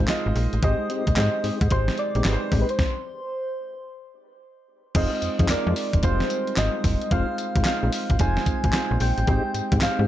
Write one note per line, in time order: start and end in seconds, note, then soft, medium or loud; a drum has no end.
0.00 0.09 G#3 loud
0.00 0.09 D#4 medium
0.00 0.09 F4 medium
0.00 0.64 A#4 medium
0.00 0.64 C5 loud
0.00 0.32 F5 loud
0.08 0.54 G#3 loud
0.08 0.55 D#4 medium
0.08 0.55 F4 medium
0.08 0.55 D#5 loud
0.08 snare loud
0.08 clap medium
0.08 closed hi-hat medium
0.26 0.33 G#1 medium
0.36 0.48 A#1 medium
0.36 open hi-hat medium
0.53 0.60 A1 medium
0.53 closed hi-hat medium
0.62 0.75 G#1 loud
0.62 0.78 G#3 medium
0.62 1.08 G#3 medium
0.62 0.78 C4 medium
0.62 0.78 D#4 medium
0.62 1.09 D#4 medium
0.62 0.78 G4 medium
0.62 1.09 G4 medium
0.62 1.09 C5 medium
0.62 1.73 D#5 loud
0.62 kick loud
0.62 closed hi-hat medium
0.89 1.05 G#3 medium
0.89 1.05 C4 medium
0.89 1.05 D#4 medium
0.89 1.05 G4 medium
0.89 closed hi-hat medium
1.07 1.14 A#1 medium
1.07 kick loud
1.07 closed hi-hat medium
1.16 1.29 G#2 loud
1.16 1.62 G#3 medium
1.16 1.63 D#4 medium
1.16 1.63 G4 medium
1.16 1.63 C5 medium
1.16 snare loud
1.16 clap medium
1.16 closed hi-hat medium
1.43 1.51 G#2 soft
1.43 1.59 G#3 medium
1.43 1.59 C4 medium
1.43 1.59 D#4 medium
1.43 1.59 G4 medium
1.43 open hi-hat medium
1.61 1.68 G#2 medium
1.61 kick loud
1.61 closed hi-hat medium
1.70 1.90 G#1 loud
1.70 2.16 G#3 medium
1.70 2.17 D#4 medium
1.70 2.17 G4 medium
1.70 2.17 C5 medium
1.70 1.98 C5 loud
1.70 kick loud
1.70 closed hi-hat medium
1.88 snare medium
1.98 2.57 D5 loud
1.98 closed hi-hat medium
2.15 2.22 A#1 medium
2.15 2.23 G#3 medium
2.15 2.24 C4 medium
2.15 2.24 D#4 medium
2.15 2.24 G4 medium
2.15 closed hi-hat soft
2.24 2.37 G#1 medium
2.24 2.71 G#3 medium
2.24 2.71 D#4 medium
2.24 2.71 G4 medium
2.24 2.34 B4 medium
2.24 snare loud
2.24 clap medium
2.24 closed hi-hat medium
2.33 2.74 C5 loud
2.51 2.64 A1 loud
2.51 2.67 G#3 medium
2.51 2.67 C4 medium
2.51 2.67 D#4 medium
2.51 2.67 G4 medium
2.51 kick medium
2.51 open hi-hat medium
2.62 2.72 B4 medium
2.69 4.42 C5 loud
2.69 closed hi-hat medium
2.79 kick loud
2.79 snare medium
4.95 5.07 F1 loud
4.95 5.10 G#3 medium
4.95 5.41 G#3 medium
4.95 5.10 C4 medium
4.95 5.41 C4 medium
4.95 5.11 D#4 medium
4.95 5.41 D#4 medium
4.95 5.11 F4 medium
4.95 5.41 F4 medium
4.95 5.41 C5 medium
4.95 5.52 D#5 loud
4.95 kick loud
4.95 closed hi-hat medium
4.95 crash loud
5.22 5.29 F2 soft
5.22 closed hi-hat medium
5.22 tambourine medium
5.39 5.46 F2 medium
5.39 5.48 G#3 medium
5.39 5.48 C4 medium
5.39 5.48 D#4 medium
5.39 5.48 F4 medium
5.39 kick loud
5.39 closed hi-hat medium
5.49 5.56 F2 soft
5.49 5.95 G#3 medium
5.49 5.95 C4 medium
5.49 5.95 D#4 medium
5.49 5.95 F4 medium
5.49 5.95 A#4 medium
5.49 6.06 D5 medium
5.49 snare loud
5.49 clap loud
5.49 closed hi-hat medium
5.49 tambourine loud
5.66 5.73 F2 loud
5.66 5.75 G#3 medium
5.66 5.75 C4 medium
5.66 5.75 D#4 medium
5.66 5.75 F4 medium
5.76 open hi-hat medium
5.76 tambourine medium
5.93 6.00 F1 medium
5.93 kick loud
5.93 closed hi-hat medium
6.03 6.22 F1 loud
6.03 6.12 G3 medium
6.03 6.49 C4 medium
6.03 6.49 D#4 medium
6.03 6.49 F4 medium
6.03 6.60 C5 loud
6.03 6.50 C5 medium
6.03 kick loud
6.03 closed hi-hat medium
6.03 tambourine medium
6.10 6.52 G#3 medium
6.20 snare medium
6.30 closed hi-hat medium
6.30 tambourine medium
6.47 closed hi-hat medium
6.57 6.70 G#1 medium
6.57 7.03 G#3 medium
6.57 7.03 C4 medium
6.57 7.03 D#4 medium
6.57 7.03 F4 medium
6.57 7.04 C5 medium
6.57 7.14 D#5 loud
6.57 snare loud
6.57 clap medium
6.57 closed hi-hat medium
6.57 tambourine medium
6.84 6.96 F#1 loud
6.84 kick medium
6.84 open hi-hat medium
6.84 tambourine medium
7.01 closed hi-hat medium
7.11 7.24 F1 loud
7.11 7.27 G#3 medium
7.11 7.57 G#3 medium
7.11 7.27 C4 medium
7.11 7.57 C4 medium
7.11 7.27 D#4 medium
7.11 7.57 D#4 medium
7.11 7.27 F4 medium
7.11 7.58 F4 medium
7.11 7.58 C5 medium
7.11 7.66 F5 loud
7.11 kick loud
7.11 closed hi-hat medium
7.38 closed hi-hat medium
7.38 tambourine medium
7.55 7.62 G#1 medium
7.55 7.64 G#3 medium
7.55 7.64 C4 medium
7.55 7.64 D#4 medium
7.55 7.64 F4 medium
7.55 kick loud
7.55 closed hi-hat medium
7.65 8.11 G#3 medium
7.65 8.11 C4 medium
7.65 8.11 D#4 medium
7.65 8.12 F4 medium
7.65 8.12 C5 medium
7.65 8.16 F5 loud
7.65 snare loud
7.65 clap medium
7.65 closed hi-hat medium
7.65 tambourine medium
7.82 7.90 A#1 medium
7.82 7.91 G#3 medium
7.82 7.91 C4 medium
7.82 7.91 D#4 medium
7.82 7.91 F4 medium
7.92 open hi-hat medium
7.92 tambourine medium
8.10 8.17 G#1 medium
8.10 kick loud
8.10 closed hi-hat medium
8.19 8.39 F1 loud
8.19 8.65 G#3 medium
8.19 8.65 C4 medium
8.19 8.65 D#4 medium
8.19 8.66 F4 medium
8.19 8.66 C5 medium
8.19 8.97 G#5 loud
8.19 kick loud
8.19 closed hi-hat medium
8.19 tambourine medium
8.37 snare medium
8.46 kick medium
8.46 closed hi-hat medium
8.46 tambourine medium
8.64 8.71 G#1 loud
8.64 kick medium
8.64 closed hi-hat medium
8.73 9.19 G#3 medium
8.73 9.19 C4 medium
8.73 9.19 D#4 medium
8.73 9.20 F4 medium
8.73 9.20 C5 medium
8.73 snare loud
8.73 clap medium
8.73 closed hi-hat medium
8.73 tambourine medium
8.91 8.98 A#1 loud
9.00 9.13 A#1 loud
9.00 9.78 G5 loud
9.00 open hi-hat medium
9.00 tambourine medium
9.18 9.25 A1 medium
9.18 closed hi-hat medium
9.27 9.40 G#1 loud
9.27 9.43 G#3 medium
9.27 9.73 G#3 medium
9.27 9.43 C4 medium
9.27 9.73 C4 medium
9.27 9.43 D#4 medium
9.27 9.74 D#4 medium
9.27 9.43 G4 medium
9.27 9.74 G4 medium
9.27 9.74 C5 medium
9.27 kick loud
9.27 closed hi-hat medium
9.54 9.62 G#2 soft
9.54 closed hi-hat medium
9.54 tambourine medium
9.72 9.79 G#2 medium
9.72 9.80 G#3 medium
9.72 9.80 C4 medium
9.72 9.81 D#4 medium
9.72 9.81 G4 medium
9.72 kick loud
9.72 closed hi-hat medium
9.81 9.89 G#2 medium
9.81 10.08 G#3 medium
9.81 10.08 C4 medium
9.81 10.08 D#4 medium
9.81 10.08 G4 medium
9.81 10.08 C5 medium
9.81 10.08 F5 loud
9.81 snare loud
9.81 clap medium
9.81 closed hi-hat medium
9.81 tambourine loud
9.99 10.06 G#2 medium
9.99 10.07 G#3 medium
9.99 10.07 C4 medium
9.99 10.08 D#4 medium
9.99 10.08 G4 medium